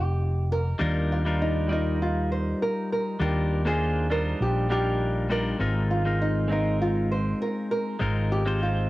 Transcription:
Already playing: fretless electric bass F1, nylon-string guitar G4
0.52 nylon-string guitar A#4
0.79 fretless electric bass D#2, clean electric guitar G3 D4 D#4 F4 A#4
1.12 nylon-string guitar F4
1.25 clean electric guitar G3 D4 D#4 F4 A#4
1.42 nylon-string guitar D#4
1.68 clean electric guitar G3 D#4 F4 D5
1.72 nylon-string guitar D#4, clean electric guitar A#4
2.02 nylon-string guitar F4
2.32 nylon-string guitar C5
2.62 nylon-string guitar A#4
2.92 nylon-string guitar A#4
3.20 fretless electric bass D#2, clean electric guitar G3 D4 D#4 F4 A#4, nylon-string guitar G4
3.65 clean electric guitar A#3 D4 D#4 F4 C5, nylon-string guitar G#4
4.10 clean electric guitar G3 D4 D#4 F4 C5, nylon-string guitar A#4
4.41 fretless electric bass A#1, nylon-string guitar G4
4.70 clean electric guitar G3 D4 D#4 F4 A#4, nylon-string guitar G4
5.30 clean electric guitar G3 D4 D#4 F4 D5, nylon-string guitar A#4
5.59 fretless electric bass G#1, clean electric guitar G#3 C4 D#4 F4 A#4
5.91 nylon-string guitar F4
6.05 clean electric guitar G#3 C4 D#4 F4 A#4
6.22 nylon-string guitar D#4
6.48 clean electric guitar G#3 C4 D#4 F4, nylon-string guitar D#4
6.53 clean electric guitar A#4
6.82 nylon-string guitar F4
7.12 nylon-string guitar C5
7.42 nylon-string guitar A#4
7.71 nylon-string guitar A#4
7.99 fretless electric bass G#1, clean electric guitar G#3 C4 D#4 F4 A#4
8.32 nylon-string guitar G4
8.45 clean electric guitar G#3 C4 D#4 F4 C5
8.63 nylon-string guitar F4

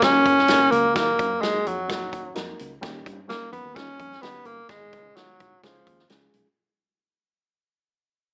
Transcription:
Already playing: fingered electric bass G#1
0.02 reed electric piano F#3 A#3 C#4 F#4 A#4, alto saxophone C#4, kick, snare, closed hi-hat
0.25 fingered electric bass F#1, kick, closed hi-hat
0.38 snare
0.48 fingered electric bass G#1, reed electric piano F#3 A#3 C#4 F#4 A#4, snare, closed hi-hat
0.71 fingered electric bass C#2, alto saxophone A#3, closed hi-hat
0.94 fingered electric bass D#2, reed electric piano F#3 A#3 D#4 F#4 A#4, alto saxophone A#3, kick, snare, closed hi-hat
1.19 fingered electric bass F#2, kick, closed hi-hat
1.41 reed electric piano F#3 A#3 D#4 F#4 G#4, alto saxophone G#3, snare, closed hi-hat
1.55 muted fingered electric bass stroke
1.67 fingered electric bass F2, alto saxophone F#3, closed hi-hat
1.88 reed electric piano F#3 A#3 D#4 F#4 C#5, kick, snare, closed hi-hat
2.13 fingered electric bass D#2, kick, closed hi-hat
2.35 fingered electric bass F2, reed electric piano F#3 A#3 D#4 F#4 A#4, snare, closed hi-hat
2.59 fingered electric bass C#2, closed hi-hat
2.81 fingered electric bass D#2, reed electric piano G3 A#3 C#4 D#4 G4, kick, snare, closed hi-hat
3.06 fingered electric bass G2, kick, closed hi-hat
3.28 reed electric piano G3 A#3 C#4 D#4 F4, alto saxophone A#3, snare, closed hi-hat
3.52 fingered electric bass F2, alto saxophone B3, closed hi-hat
3.64 fingered electric bass D#2
3.75 reed electric piano G3 A#3 C#4 D#4 F4, alto saxophone C#4, kick, snare, closed hi-hat
4.00 fingered electric bass F2, kick, closed hi-hat
4.12 snare
4.22 fingered electric bass D#2, reed electric piano G3 A#3 C#4 D#4 G4, alto saxophone B3, snare, closed hi-hat
4.45 fingered electric bass G1, alto saxophone A#3, closed hi-hat
4.68 fingered electric bass G#1, reed electric piano D#3 G#3 B3 D#4 G#4, alto saxophone G#3, kick, snare, closed hi-hat
4.93 fingered electric bass C#2, kick, closed hi-hat
5.16 reed electric piano D#3 G#3 B3 D#4 F4, alto saxophone F#3, snare, closed hi-hat
5.29 muted fingered electric bass stroke
5.40 fingered electric bass B1, kick, closed hi-hat
5.62 fingered electric bass C#2, reed electric piano F3 G#3 C#4 F4 G#4, alto saxophone F3, kick, snare, closed hi-hat
5.87 fingered electric bass D#2, kick, closed hi-hat
5.99 snare
6.08 fingered electric bass C#2, reed electric piano F3 G#3 C#4 D#4 G#4, snare, closed hi-hat
6.15 reed electric piano F4
6.34 fingered electric bass B1, closed hi-hat

